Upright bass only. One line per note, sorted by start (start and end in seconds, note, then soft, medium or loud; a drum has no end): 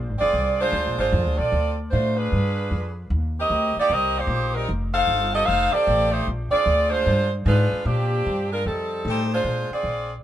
0.09 0.21 G#1 medium
0.21 0.33 F1 medium
0.33 0.72 C2 medium
0.72 0.86 D2 loud
0.86 0.98 A#1 medium
0.99 1.12 G#1 medium
1.12 1.25 F2 loud
1.25 1.38 D2 medium
1.39 1.51 A#1 medium
1.52 1.91 D2 medium
1.93 2.31 A2 loud
2.32 2.70 G2 medium
2.71 3.10 F2 medium
3.10 3.49 D#2 loud
3.50 3.74 D2 loud
3.76 muted upright bass stroke soft
3.90 4.26 C2 medium
4.27 4.67 A#1 loud
4.69 5.07 F1 loud
5.07 5.47 G1 medium
5.48 5.72 F1 medium
5.74 muted upright bass stroke soft
5.87 6.26 A1 loud
6.27 6.51 A#1 medium
6.53 muted upright bass stroke soft
6.66 7.05 D2 loud
7.06 7.45 G2 medium
7.46 7.70 G#2 loud
7.72 muted upright bass stroke medium
7.85 8.24 A#2 loud
8.26 8.64 G2 medium
8.66 9.04 F2 medium
9.05 9.43 A2 medium
9.44 9.69 A#2 medium
9.70 muted upright bass stroke soft
9.83 10.22 A#1 medium